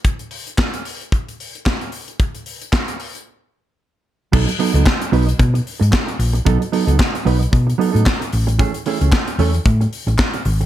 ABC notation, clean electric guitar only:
X:1
M:4/4
L:1/16
Q:"Swing 16ths" 1/4=112
K:Bmix
V:1 name="Clean electric guitar"
z16 | z16 | [F,B,DA] z [F,B,DA] [F,B,DA] z2 [F,B,DB] z8 z | [F,B,DA] z [F,B,DA] [F,B,DA] z2 [F,B,DB] z3 [F,B,DA] [F,B,DA] z4 |
[E,A,CG] z [E,A,CG] [E,A,CG] z2 [E,A,CA] z8 z |]